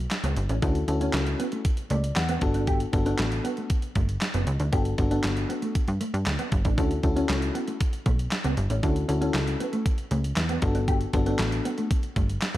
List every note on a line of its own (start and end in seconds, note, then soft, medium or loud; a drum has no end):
0.11 snare loud
0.11 clap medium
0.11 closed hi-hat medium
0.24 0.35 C#2 medium
0.24 0.34 B3 medium
0.24 closed hi-hat medium
0.37 0.48 G1 loud
0.37 muted clean electric guitar stroke soft
0.37 closed hi-hat medium
0.49 0.60 A1 medium
0.49 0.60 C#4 medium
0.49 closed hi-hat soft
0.62 0.84 D2 loud
0.62 0.77 C#4 medium
0.62 0.73 D4 medium
0.62 0.77 E4 medium
0.62 0.78 F#4 medium
0.62 0.78 A4 medium
0.62 kick loud
0.62 closed hi-hat medium
0.75 closed hi-hat medium
0.88 1.10 D2 medium
0.88 0.95 C#4 medium
0.88 0.96 E4 medium
0.88 0.96 F#4 medium
0.88 0.96 A4 loud
0.88 muted clean electric guitar stroke soft
0.88 closed hi-hat medium
1.01 1.61 C#4 medium
1.01 1.11 C#4 medium
1.01 1.61 E4 medium
1.01 1.61 F#4 medium
1.01 1.62 A4 medium
1.01 closed hi-hat soft
1.13 1.35 C#2 loud
1.13 snare loud
1.13 clap loud
1.13 closed hi-hat medium
1.27 closed hi-hat soft
1.40 1.49 B3 medium
1.40 closed hi-hat medium
1.52 1.62 A3 medium
1.52 closed hi-hat soft
1.65 kick loud
1.65 closed hi-hat loud
1.77 closed hi-hat soft
1.90 2.12 C#2 loud
1.90 2.01 A3 medium
1.90 2.15 D5 medium
1.90 closed hi-hat medium
2.04 closed hi-hat medium
2.16 2.38 E2 medium
2.16 2.64 F#5 medium
2.16 snare loud
2.16 clap medium
2.16 closed hi-hat loud
2.29 2.39 B3 medium
2.29 closed hi-hat medium
2.41 2.85 G1 loud
2.41 2.83 B3 medium
2.41 2.83 D4 medium
2.41 2.83 F#4 medium
2.41 2.83 A4 medium
2.41 muted clean electric guitar stroke soft
2.41 kick loud
2.41 closed hi-hat medium
2.54 2.65 D4 medium
2.54 closed hi-hat medium
2.67 2.78 G4 medium
2.67 kick loud
2.67 closed hi-hat medium
2.80 closed hi-hat soft
2.93 3.15 G1 loud
2.93 3.00 B3 medium
2.93 3.01 D4 medium
2.93 3.01 F#4 medium
2.93 3.01 A4 medium
2.93 muted clean electric guitar stroke soft
2.93 kick medium
2.93 closed hi-hat medium
3.05 3.66 B3 medium
3.05 3.66 D4 medium
3.05 3.16 D4 medium
3.05 3.66 F#4 medium
3.05 3.67 A4 medium
3.05 closed hi-hat medium
3.18 3.41 A1 loud
3.18 muted clean electric guitar stroke soft
3.18 snare loud
3.18 clap loud
3.18 closed hi-hat loud
3.32 closed hi-hat medium
3.44 3.54 B3 medium
3.44 closed hi-hat medium
3.57 3.68 A3 medium
3.57 closed hi-hat soft
3.70 kick loud
3.70 closed hi-hat loud
3.82 closed hi-hat soft
3.95 4.17 G1 loud
3.95 4.06 A3 medium
3.95 kick medium
3.95 closed hi-hat medium
4.09 closed hi-hat medium
4.21 snare loud
4.21 clap medium
4.21 closed hi-hat medium
4.34 4.45 F#1 medium
4.34 4.44 B3 medium
4.34 closed hi-hat medium
4.47 4.58 C#2 loud
4.47 muted clean electric guitar stroke soft
4.47 closed hi-hat medium
4.60 4.71 D2 medium
4.60 4.70 D4 medium
4.60 closed hi-hat soft
4.72 4.94 G1 loud
4.72 4.88 B3 medium
4.72 4.88 D4 medium
4.72 4.88 F#4 medium
4.72 4.83 G4 medium
4.72 4.88 A4 medium
4.72 kick loud
4.72 closed hi-hat medium
4.85 closed hi-hat soft
4.98 5.20 G1 loud
4.98 5.06 B3 medium
4.98 5.06 D4 medium
4.98 5.06 F#4 medium
4.98 5.06 A4 medium
4.98 muted clean electric guitar stroke soft
4.98 kick medium
4.98 closed hi-hat medium
5.11 5.71 B3 medium
5.11 5.72 D4 medium
5.11 5.21 D4 medium
5.11 5.72 F#4 medium
5.11 5.72 A4 medium
5.11 closed hi-hat soft
5.24 5.46 G1 loud
5.24 muted clean electric guitar stroke soft
5.24 snare loud
5.24 clap loud
5.24 closed hi-hat loud
5.37 closed hi-hat medium
5.49 5.59 B3 medium
5.49 closed hi-hat medium
5.62 5.72 A3 medium
5.62 closed hi-hat soft
5.75 kick loud
5.75 closed hi-hat loud
5.88 5.99 G2 medium
5.88 closed hi-hat soft
6.01 6.11 A3 medium
6.01 closed hi-hat medium
6.14 6.25 G2 loud
6.14 closed hi-hat medium
6.26 6.37 D2 medium
6.26 snare loud
6.26 clap medium
6.26 closed hi-hat medium
6.39 6.49 B3 medium
6.39 closed hi-hat medium
6.52 6.63 G1 loud
6.52 muted clean electric guitar stroke soft
6.52 kick medium
6.52 closed hi-hat medium
6.65 6.76 A1 medium
6.65 6.75 D4 medium
6.65 kick medium
6.65 closed hi-hat medium
6.78 6.99 D2 loud
6.78 6.93 C#4 medium
6.78 6.88 D4 medium
6.78 6.93 E4 medium
6.78 6.93 F#4 medium
6.78 6.93 A4 medium
6.78 kick loud
6.78 closed hi-hat medium
6.91 closed hi-hat soft
7.03 7.25 D2 medium
7.03 7.11 C#4 medium
7.03 7.11 E4 medium
7.03 7.11 F#4 medium
7.03 7.11 A4 medium
7.03 muted clean electric guitar stroke soft
7.03 kick medium
7.03 closed hi-hat medium
7.16 7.77 C#4 medium
7.16 7.26 C#4 medium
7.16 7.77 E4 medium
7.16 7.77 F#4 medium
7.16 7.77 A4 medium
7.16 closed hi-hat medium
7.29 7.51 C#2 loud
7.29 muted clean electric guitar stroke soft
7.29 snare loud
7.29 clap loud
7.29 closed hi-hat medium
7.42 closed hi-hat medium
7.55 7.65 B3 medium
7.55 closed hi-hat medium
7.68 7.78 A3 medium
7.68 closed hi-hat soft
7.80 kick loud
7.80 closed hi-hat loud
7.93 closed hi-hat soft
8.06 8.28 B1 medium
8.06 8.16 A3 medium
8.06 kick medium
8.06 closed hi-hat medium
8.19 closed hi-hat medium
8.31 snare loud
8.31 clap medium
8.31 closed hi-hat medium
8.44 8.55 C#2 medium
8.44 8.55 B3 medium
8.44 closed hi-hat medium
8.57 8.68 G1 loud
8.57 muted clean electric guitar stroke soft
8.57 closed hi-hat medium
8.70 8.81 A1 medium
8.70 8.80 C#4 medium
8.70 closed hi-hat medium
8.83 9.05 D2 loud
8.83 8.98 C#4 medium
8.83 8.93 D4 medium
8.83 8.98 E4 medium
8.83 8.98 F#4 medium
8.83 8.98 A4 medium
8.83 kick loud
8.83 closed hi-hat medium
8.96 closed hi-hat soft
9.08 9.30 D2 loud
9.08 9.16 C#4 medium
9.08 9.16 E4 medium
9.08 9.16 F#4 medium
9.08 9.16 A4 medium
9.08 muted clean electric guitar stroke soft
9.08 closed hi-hat medium
9.21 9.82 C#4 medium
9.21 9.31 C#4 medium
9.21 9.82 E4 medium
9.21 9.82 F#4 medium
9.21 9.82 A4 loud
9.21 closed hi-hat soft
9.34 9.56 C#2 loud
9.34 muted clean electric guitar stroke soft
9.34 snare loud
9.34 clap medium
9.34 closed hi-hat medium
9.47 closed hi-hat medium
9.60 9.70 B3 medium
9.60 closed hi-hat medium
9.73 9.83 A3 medium
9.73 closed hi-hat soft
9.86 kick loud
9.86 closed hi-hat medium
9.98 closed hi-hat soft
10.11 10.33 C#2 medium
10.11 10.21 A3 medium
10.11 closed hi-hat medium
10.24 closed hi-hat soft
10.36 10.58 E2 loud
10.36 snare loud
10.36 clap medium
10.36 closed hi-hat medium
10.49 10.59 B3 medium
10.49 closed hi-hat medium
10.62 11.06 G1 loud
10.62 11.03 B3 medium
10.62 11.03 D4 medium
10.62 11.04 F#4 medium
10.62 11.04 A4 medium
10.62 muted clean electric guitar stroke soft
10.62 kick medium
10.62 closed hi-hat medium
10.75 10.85 D4 medium
10.75 closed hi-hat soft
10.88 10.98 G4 medium
10.88 kick loud
10.88 closed hi-hat medium
11.01 closed hi-hat soft
11.13 11.35 G1 loud
11.13 11.21 B3 medium
11.13 11.21 D4 medium
11.13 11.21 F#4 medium
11.13 11.22 A4 medium
11.13 muted clean electric guitar stroke soft
11.13 kick medium
11.13 closed hi-hat medium
11.26 11.87 B3 medium
11.26 11.87 D4 medium
11.26 11.37 D4 medium
11.26 11.87 F#4 medium
11.26 11.87 A4 medium
11.26 closed hi-hat medium
11.39 11.61 A1 loud
11.39 snare loud
11.39 clap loud
11.39 closed hi-hat medium
11.52 closed hi-hat medium
11.65 11.75 B3 medium
11.65 closed hi-hat medium
11.78 11.88 A3 medium
11.78 closed hi-hat soft
11.91 kick loud
11.91 closed hi-hat loud
12.03 closed hi-hat soft
12.16 12.38 G1 medium
12.16 12.26 A3 medium
12.16 kick medium
12.16 closed hi-hat medium
12.29 closed hi-hat soft
12.42 snare loud
12.42 clap medium
12.42 closed hi-hat medium